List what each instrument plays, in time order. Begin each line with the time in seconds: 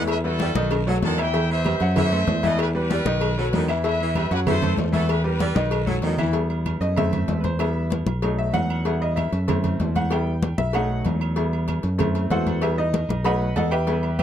Already playing: fingered electric bass E2, grand piano E3 E4 E5, saxophone section A3
0.08 trumpet section B4 E5, cowbell, low agogo, long guiro, claves
0.24 grand piano G3 E4 B4, trumpet section F#4 A4, high conga
0.39 saxophone section G3, cowbell, high conga, low timbale, low agogo, short guiro
0.55 fingered electric bass B1, grand piano D#3 D#4 D#5, high conga, low agogo, short guiro
0.71 cowbell, high conga, high timbale, low agogo, long guiro, claves
0.87 grand piano F#3 F#4 A4, saxophone section F#3, high conga, low timbale
1.02 fingered electric bass E2, saxophone section D#3, trumpet section F#5 A5, cowbell, high conga, low agogo, short guiro
1.18 grand piano E3 E4 E5, trumpet section E5 G5, high conga, low timbale, low agogo, short guiro, claves
1.33 grand piano E3 E4 E5, cowbell, high conga, low agogo, long guiro
1.50 saxophone section E3, trumpet section C5 E5, high conga, low agogo
1.64 grand piano G3 G4 B4, cowbell, high conga, low timbale, low agogo, short guiro, claves
1.80 fingered electric bass F#2, grand piano F#3 F#4 F#5, cowbell, high conga, short guiro
1.96 saxophone section E3, trumpet section C5 E5, cowbell, high conga, low conga, low agogo, long guiro, claves
2.12 grand piano A3 A4 C5, cowbell, high conga, low agogo
2.27 fingered electric bass E2, cowbell, high conga, low timbale, short guiro
2.43 grand piano E3 E4 E5, saxophone section A3, trumpet section B4 D#5, cowbell, high conga, low agogo, short guiro
2.59 trumpet section G4 B4, cowbell, high conga, low agogo, long guiro, claves
2.75 grand piano G3 G4 B4, trumpet section G4 B4, high conga
2.90 saxophone section G3, cowbell, high conga, low timbale, low agogo, short guiro
3.05 fingered electric bass B1, grand piano D#3 D#4 D#5, high conga, low agogo, short guiro
3.21 cowbell, high conga, low agogo, long guiro, claves
3.38 grand piano F#3 F#4 A4, saxophone section F#3, high conga
3.53 fingered electric bass E2, saxophone section D#3, cowbell, high conga, low timbale, low agogo, short guiro
3.68 grand piano E3 E4 E5, high conga, low agogo, short guiro, claves
3.84 grand piano E3 E4 E5, trumpet section B4 E5, cowbell, high conga, low agogo, long guiro
4.00 saxophone section E3, high conga, low agogo
4.15 grand piano G3 G4 B4, trumpet section B4 E5, cowbell, high conga, low timbale, low agogo, short guiro, claves
4.31 fingered electric bass F#2, grand piano F#3 F#4 F#5, trumpet section G4 B4, cowbell, high conga, short guiro
4.47 saxophone section E3, trumpet section A4 C5, cowbell, high conga, low conga, low agogo, long guiro, claves
4.62 grand piano A3 A4 C5, cowbell, high conga, low conga, low agogo
4.77 fingered electric bass E2, cowbell, high conga, low timbale, short guiro
4.92 grand piano E3 E4 E5, saxophone section A3, trumpet section F#4 A4, cowbell, high conga, low agogo, short guiro
5.09 trumpet section G4 B4, cowbell, high conga, low agogo, long guiro, claves
5.24 grand piano G3 G4 B4, trumpet section G4 B4, high conga
5.39 saxophone section G3, cowbell, high conga, low timbale, low agogo, short guiro
5.55 fingered electric bass B1, grand piano D#3 D#4 D#5, high conga, low agogo, short guiro
5.71 cowbell, high conga, low agogo, long guiro, claves
5.86 grand piano F#3 F#4 A4, saxophone section F#3, high conga
6.02 fingered electric bass E2, saxophone section D#3, cowbell, low timbale, low agogo, short guiro
6.18 grand piano E3 E4 E5, low conga, low agogo, short guiro, claves
6.33 grand piano G3 B3 E4, cowbell, high conga, low agogo
6.50 high conga, low agogo
6.66 cowbell, high conga, low timbale, low agogo, claves
6.81 fingered electric bass F#2, grand piano D#5, cowbell, high conga
6.96 grand piano A3 C4 E4 E5, cowbell, high conga, low conga, low agogo, claves
7.13 cowbell, high conga, low conga, low agogo
7.28 fingered electric bass E2, cowbell, high conga, low timbale
7.40 grand piano B4, cowbell, low agogo
7.44 grand piano C5, high conga
7.59 grand piano G3 B3 E4 E5, cowbell, high conga, low agogo, claves
7.77 high conga
7.90 cowbell, high conga, low timbale, low agogo
8.06 fingered electric bass B1, high conga, low agogo
8.22 grand piano F#3 A3 D#4, cowbell, high conga, low agogo, claves
8.39 grand piano E5, high conga
8.53 fingered electric bass E2, grand piano F#5, cowbell, high conga, low timbale, low agogo
8.70 high conga, low agogo, claves
8.85 grand piano G3 B3 E4, cowbell, high conga, low agogo
9.01 grand piano D#5, high conga, low agogo
9.16 grand piano E5, cowbell, high conga, low timbale, low agogo, claves
9.32 fingered electric bass F#2, cowbell, high conga
9.48 grand piano A3 C4 E4, cowbell, high conga, low conga, low agogo, claves
9.64 cowbell, high conga, low conga, low agogo
9.80 fingered electric bass E2, cowbell, high conga, low timbale
9.96 grand piano F#5, cowbell, high conga, low agogo
10.11 grand piano G3 B3 E4 G5, cowbell, high conga, low agogo, claves
10.27 high conga
10.42 cowbell, high conga, low timbale, low agogo
10.58 fingered electric bass B1, grand piano E5, high conga, low agogo
10.73 grand piano F#3 A3 D#4 F#5, cowbell, high conga, low agogo, claves
10.90 high conga
11.05 fingered electric bass E2, cowbell, high conga, low timbale, low agogo
11.21 high conga, low agogo, claves
11.36 grand piano G3 B3 E4, cowbell, high conga, low agogo
11.53 high conga, low agogo
11.68 cowbell, high conga, low timbale, low agogo, claves
11.83 fingered electric bass F#2, cowbell, high conga
11.98 grand piano A3 C4 E4, cowbell, high conga, low conga, low agogo, claves
12.15 cowbell, high conga, low agogo
12.30 fingered electric bass E2, grand piano F#4 A4 C5 F#5, cowbell, high conga, low timbale
12.47 cowbell, high conga, low agogo
12.62 grand piano G3 B3 E4 G4 B4 E5, cowbell, high conga, low agogo, claves
12.78 grand piano D#4 D#5, high conga
12.93 cowbell, high conga, low timbale, low agogo
13.09 fingered electric bass B1, high conga, low agogo
13.24 grand piano F#3 A3 D#4 B4 D#5 F#5 B5, cowbell, high conga, low agogo, claves
13.42 high conga
13.56 fingered electric bass E2, grand piano A4 D#5 F#5 A5, cowbell, high conga, low timbale, low agogo
13.71 grand piano G4 B4 E5 G5, high conga, low agogo, claves
13.87 grand piano G3 B3 E4, cowbell, high conga, low agogo
14.03 high conga, low agogo
14.19 grand piano G4 B4 E5 G5, cowbell, high conga, low timbale, low agogo, claves